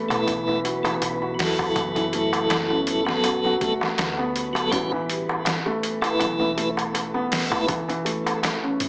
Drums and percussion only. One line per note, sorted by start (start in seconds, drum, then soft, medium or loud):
0.10 closed hi-hat soft
0.10 darbuka tek medium
0.28 kick loud
0.28 closed hi-hat medium
0.28 darbuka tek medium
0.49 darbuka tek soft
0.65 closed hi-hat medium
0.85 closed hi-hat soft
0.85 darbuka tek medium
1.02 closed hi-hat medium
1.02 darbuka tek medium
1.22 darbuka tek soft
1.39 snare loud
1.39 open hi-hat medium
1.59 kick medium
1.59 darbuka tek medium
1.76 kick medium
1.76 closed hi-hat medium
1.76 darbuka tek medium
1.96 closed hi-hat soft
1.96 darbuka tek soft
2.13 closed hi-hat medium
2.33 closed hi-hat soft
2.33 darbuka tek medium
2.50 snare loud
2.50 closed hi-hat medium
2.50 darbuka tek medium
2.71 darbuka tek soft
2.87 closed hi-hat medium
3.06 snare soft
3.06 darbuka tek medium
3.24 closed hi-hat medium
3.24 darbuka tek medium
3.45 darbuka tek soft
3.61 kick medium
3.61 closed hi-hat medium
3.81 snare soft
3.81 darbuka tek medium
3.98 snare loud
3.98 closed hi-hat medium
3.98 darbuka tek medium
4.18 darbuka tek soft
4.36 closed hi-hat medium
4.55 closed hi-hat soft
4.55 darbuka tek medium
4.72 kick medium
4.72 closed hi-hat medium
4.72 darbuka tek medium
4.92 darbuka tek soft
5.09 closed hi-hat medium
5.29 darbuka tek medium
5.45 snare loud
5.45 closed hi-hat medium
5.45 darbuka tek medium
5.66 darbuka tek soft
5.83 closed hi-hat medium
6.02 closed hi-hat soft
6.02 darbuka tek medium
6.20 kick loud
6.20 closed hi-hat medium
6.20 darbuka tek medium
6.40 darbuka tek soft
6.58 closed hi-hat medium
6.77 closed hi-hat soft
6.77 darbuka tek medium
6.95 closed hi-hat medium
6.95 darbuka tek medium
7.15 darbuka tek soft
7.32 snare loud
7.32 open hi-hat medium
7.52 kick loud
7.52 darbuka tek medium
7.68 kick loud
7.68 closed hi-hat medium
7.68 darbuka tek medium
7.89 closed hi-hat soft
7.89 darbuka tek soft
8.06 closed hi-hat medium
8.27 closed hi-hat soft
8.27 darbuka tek medium
8.43 snare loud
8.43 closed hi-hat medium
8.43 darbuka tek medium
8.64 darbuka tek soft
8.80 closed hi-hat medium